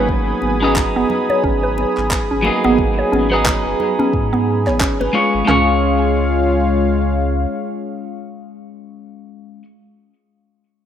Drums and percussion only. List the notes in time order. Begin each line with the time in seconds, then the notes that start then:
0.09 kick
0.42 high conga
0.76 kick, clap, low conga
1.10 low conga
1.30 muted conga, high conga
1.44 kick
1.78 muted conga, high conga
1.97 clap
2.11 kick, clap
2.45 muted conga
2.64 muted conga
2.78 kick
3.13 high conga
3.46 kick, clap, low conga
3.80 low conga
4.00 muted conga, high conga
4.13 kick
4.34 high conga
4.67 clap, high conga
4.80 kick, clap
5.01 muted conga
5.14 high conga
5.48 snare, clap, floor tom